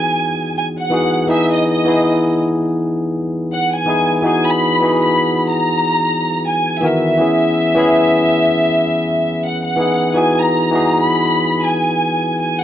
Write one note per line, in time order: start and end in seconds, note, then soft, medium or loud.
0.00 0.90 E3 medium
0.00 0.91 B3 medium
0.00 0.91 D#4 medium
0.00 0.92 F#4 medium
0.00 0.93 G#4 medium
0.00 0.56 G#5 loud
0.58 0.67 G#5 medium
0.79 1.26 F#5 medium
0.90 1.25 E3 medium
0.90 1.25 B3 medium
0.90 1.25 D#4 medium
0.90 1.26 F#4 medium
0.90 1.26 G#4 medium
1.27 1.80 E3 medium
1.27 1.80 B3 medium
1.27 1.81 D#4 medium
1.27 1.81 E4 medium
1.27 1.82 G#4 medium
1.27 1.50 E5 medium
1.53 1.67 D#5 medium
1.69 2.37 D#5 medium
1.85 3.17 E3 medium
1.85 3.18 B3 medium
1.85 3.18 D#4 medium
1.85 3.19 E4 medium
1.85 3.19 G#4 medium
3.53 3.71 F#5 loud
3.74 4.22 G#5 loud
3.85 4.20 E3 medium
3.85 4.21 B3 medium
3.85 4.21 D#4 medium
3.85 4.22 E4 medium
3.89 4.22 G#4 medium
4.22 4.75 E3 medium
4.22 4.76 B3 medium
4.22 4.76 D#4 medium
4.22 4.77 F#4 medium
4.27 4.77 G#4 medium
4.27 4.46 G#5 loud
4.48 4.99 B5 loud
4.81 6.13 E3 medium
4.81 6.13 B3 medium
4.81 6.14 D#4 medium
4.81 6.14 F#4 medium
4.85 6.15 G#4 medium
5.01 5.45 B5 loud
5.49 6.43 A#5 loud
6.47 6.83 G#5 loud
6.81 7.17 D#3 medium
6.81 7.16 E3 medium
6.81 7.16 B3 medium
6.81 7.17 F#4 medium
6.81 9.42 E5 loud
6.85 7.18 A#4 medium
7.18 7.71 E3 medium
7.18 7.71 B3 medium
7.18 7.72 C#4 medium
7.18 7.72 E4 medium
7.18 7.73 G#4 medium
7.75 9.08 E3 medium
7.75 9.08 B3 medium
7.75 9.09 C#4 medium
7.75 9.09 E4 medium
7.79 9.10 G#4 loud
9.43 9.63 F#5 loud
9.64 10.12 F#5 medium
9.76 10.11 E3 medium
9.76 10.12 B3 medium
9.76 10.12 D#4 medium
9.76 10.13 E4 medium
9.80 10.13 G#4 medium
10.14 10.67 E3 medium
10.14 10.67 B3 medium
10.14 10.68 D#4 medium
10.14 10.68 F#4 medium
10.14 10.68 G#4 medium
10.14 10.38 G#5 loud
10.39 10.90 A#5 loud
10.71 12.04 E3 medium
10.71 12.04 B3 medium
10.71 12.05 D#4 medium
10.71 12.05 F#4 medium
10.75 12.06 G#4 medium
10.92 11.64 B5 loud
11.65 12.38 G#5 medium
12.40 12.58 G#5 medium